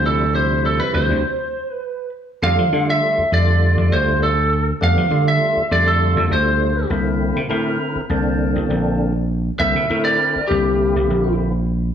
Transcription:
Already playing: slap bass D2, tonewheel organ C3 F3 G3 E4
0.06 lead electric guitar A4
0.33 tonewheel organ C3 F3 G3 E4, lead electric guitar C5
0.66 lead electric guitar A4
0.80 lead electric guitar B4
0.94 slap bass D2, lead electric guitar C5
1.10 slap bass D2
1.71 lead electric guitar B4
2.42 slap bass F2, tonewheel organ D3 G3 A3 F4, lead electric guitar F5
2.58 slap bass F3
2.73 slap bass D3, tonewheel organ D3 G3 A3 F4
2.90 lead electric guitar E5
3.18 muted slap bass stroke
3.32 slap bass F2, tonewheel organ D3 G3 A3 F4, lead electric guitar D5
3.77 slap bass F2
3.92 slap bass D2, lead electric guitar C5
4.23 lead electric guitar A4
4.81 slap bass F2, tonewheel organ D3 G3 A3 B3, lead electric guitar F5
4.97 slap bass F3
5.11 tonewheel organ D3 G3 A3 F4, slap bass D3
5.28 lead electric guitar E5
5.57 muted slap bass stroke
5.71 slap bass F2, tonewheel organ D3 G3 A3 F4, lead electric guitar D5
5.87 lead electric guitar A4
6.17 slap bass F2
6.31 slap bass D2, lead electric guitar C5
6.90 slap bass C2, tonewheel organ D3 A#3 C4 E4
7.36 slap bass C3
7.49 slap bass A2, tonewheel organ D3 C4 E4 A#4
7.96 muted slap bass stroke
8.10 slap bass C2, tonewheel organ D3 A#3 C4 D4
8.56 slap bass C2
8.70 slap bass A#1
9.60 slap bass C2, tonewheel organ D3 A#3 C4 E4, lead electric guitar E5
9.76 slap bass C3
9.90 slap bass A2, tonewheel organ D3 C4 E4 A#4
10.05 lead electric guitar D5
10.36 muted slap bass stroke
10.48 slap bass C2, tonewheel organ D3 A#3 C4 E4, lead electric guitar G4
10.96 slap bass C2
11.10 slap bass A#1

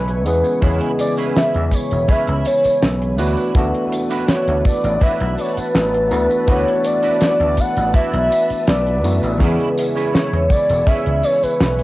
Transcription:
Already playing: slap bass B1, tine electric piano C#3 E3 G#3 B3 G#4, soft synth lead B4, string machine B4 E5 G#5 C#6
0.08 closed hi-hat
0.25 slap bass E2, tine electric piano E3 G#3 B3 C#4 G#4, soft synth lead B4, closed hi-hat, tambourine
0.44 muted clean electric guitar stroke, tambourine
0.61 slap bass E2, tine electric piano C#3 E3 G#3 B3 G#4, clean electric guitar C#4 E4 G#4 B4, soft synth lead C#5, string machine B5, kick, closed hi-hat, tambourine
0.81 closed hi-hat
0.99 soft synth lead D5, closed hi-hat, tambourine
1.17 clean electric guitar C#4 E4 G#4 B4, closed hi-hat, tambourine
1.36 soft synth lead E5, snare, closed hi-hat, tambourine
1.54 slap bass E2, closed hi-hat
1.71 soft synth lead C#5, kick, closed hi-hat, tambourine
1.91 slap bass E1, closed hi-hat, tambourine
2.08 clean electric guitar C#4 E4 G#4 B4, soft synth lead E5, kick, closed hi-hat, tambourine
2.27 slap bass C#2, closed hi-hat
2.45 soft synth lead C#5, closed hi-hat, tambourine
2.64 muted slap bass stroke, closed hi-hat, tambourine
2.82 slap bass B1, snare, closed hi-hat, tambourine
3.02 closed hi-hat
3.18 slap bass D2, tine electric piano E3 A3 B3 D4 F#4, clean electric guitar D4 E4 F#4 B4, string machine F#5 A5, closed hi-hat, tambourine
3.37 tambourine
3.54 slap bass D2, tine electric piano E3 A3 B3 D4 F#4, kick, closed hi-hat, tambourine
3.74 closed hi-hat
3.92 closed hi-hat, tambourine
4.10 clean electric guitar D4 E4 F#4 B4, closed hi-hat, tambourine
4.28 soft synth lead C#5, snare, closed hi-hat, tambourine
4.48 slap bass D2, closed hi-hat
4.65 soft synth lead D5, kick, closed hi-hat, tambourine
4.84 slap bass A1, closed hi-hat, tambourine
5.01 clean electric guitar D4 E4 F#4 B4, soft synth lead E5, muted slap bass stroke, kick, closed hi-hat, tambourine
5.20 slap bass B1, closed hi-hat
5.38 soft synth lead C#5, closed hi-hat, tambourine
5.57 soft synth lead B4, muted slap bass stroke, closed hi-hat, tambourine
5.75 slap bass A1, snare, closed hi-hat, tambourine
5.94 closed hi-hat
6.11 slap bass D2, tine electric piano E3 A3 B3 D4 F#4, soft synth lead B4, closed hi-hat, tambourine
6.30 muted clean electric guitar stroke, tambourine
6.46 slap bass D2, tine electric piano E3 A3 B3 D4 F#4, clean electric guitar D4 E4 F#4 B4, kick, closed hi-hat, tambourine
6.50 soft synth lead C#5
6.68 closed hi-hat
6.84 soft synth lead D5, closed hi-hat, tambourine
7.02 clean electric guitar D4 E4 F#4 B4, closed hi-hat, tambourine
7.21 snare, closed hi-hat, tambourine
7.40 slap bass D2, closed hi-hat
7.57 soft synth lead F#5, kick, closed hi-hat, tambourine
7.77 slap bass A1, closed hi-hat, tambourine
7.93 clean electric guitar D4 E4 F#4 B4, soft synth lead E5, kick, closed hi-hat, tambourine
8.13 slap bass B1, closed hi-hat
8.32 closed hi-hat, tambourine
8.50 muted slap bass stroke, closed hi-hat, tambourine
8.67 slap bass B1, soft synth lead D5, snare, closed hi-hat, tambourine
8.87 closed hi-hat
9.04 slap bass F#2, tine electric piano E3 A3 B3 D4 F#4, closed hi-hat, tambourine
9.22 slap bass A1, muted clean electric guitar stroke, closed hi-hat, tambourine
9.39 slap bass E2, tine electric piano C#3 E3 G#3 B3 G#4, clean electric guitar C#4 E4 G#4 B4, string machine G#5 C#6, kick, closed hi-hat, tambourine
9.60 closed hi-hat
9.77 closed hi-hat, tambourine
9.95 clean electric guitar C#4 E4 G#4 B4, closed hi-hat, tambourine
10.14 soft synth lead C#5, snare, closed hi-hat, tambourine
10.32 slap bass E2, closed hi-hat
10.50 soft synth lead D5, kick, closed hi-hat, tambourine
10.69 slap bass E1, closed hi-hat, tambourine
10.87 clean electric guitar C#4 E4 G#4 B4, soft synth lead E5, muted slap bass stroke, kick, closed hi-hat, tambourine
11.06 slap bass C#2, closed hi-hat
11.23 soft synth lead C#5, closed hi-hat, tambourine
11.43 soft synth lead B4, muted slap bass stroke, closed hi-hat, tambourine
11.60 slap bass B1, snare, closed hi-hat, tambourine
11.79 closed hi-hat

